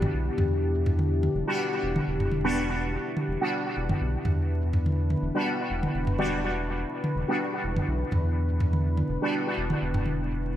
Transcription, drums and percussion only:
0.02 mid tom, high tom
0.38 mid tom, high tom
0.86 mid tom
0.99 high tom
1.23 high tom
1.96 high tom
2.20 mid tom
2.31 high tom
3.17 high tom
3.89 mid tom, high tom
4.25 mid tom, high tom
4.73 mid tom
4.86 high tom
5.10 high tom
5.83 high tom
6.07 mid tom
6.19 high tom
7.04 high tom
7.76 mid tom, high tom
8.12 mid tom, high tom
8.60 mid tom
8.73 high tom
8.97 high tom
9.70 high tom
9.94 mid tom
10.06 high tom

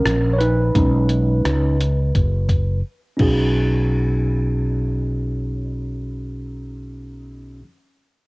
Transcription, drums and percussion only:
0.05 cross-stick, closed hi-hat
0.40 closed hi-hat
0.75 kick, closed hi-hat
1.09 closed hi-hat
1.45 cross-stick, closed hi-hat
1.80 closed hi-hat
2.15 kick, closed hi-hat
2.49 kick, closed hi-hat
3.19 kick, crash

